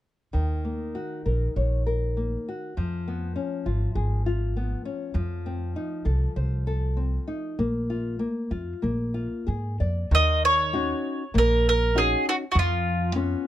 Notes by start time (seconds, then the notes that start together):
0.33 D#2 D#3
0.65 A#3
0.95 F#4
1.26 A#1 A#4
1.56 A#1 C#5
1.86 A#4
2.17 A#3
2.48 F#4
2.77 F2 F3
3.08 B3
3.36 C#4
3.66 G#1 F4
3.95 G#1 G#4
4.26 F4
4.57 B3
4.85 C#4
5.14 F2 F3
5.46 C4
5.76 D#4
6.05 C2 A4
6.36 C2 C5
6.67 A4
6.97 C4
7.27 D#4
7.59 A#1 A#3
7.90 F4
8.19 A#3
8.51 F2 F4
8.82 A#1 A#3
9.14 F4
9.47 G#2 G#4
9.80 F2 D5
10.11 D#2 D#3 D#5
10.45 C#5
10.73 C#4 D#4 F#4
11.34 A#1 A#3
11.38 A#4
11.69 A#4
11.95 C#4 D#4 F#4 G#4
12.29 F#4
12.52 F2 F3 F#4
12.59 F4
13.15 B3 C#4 F4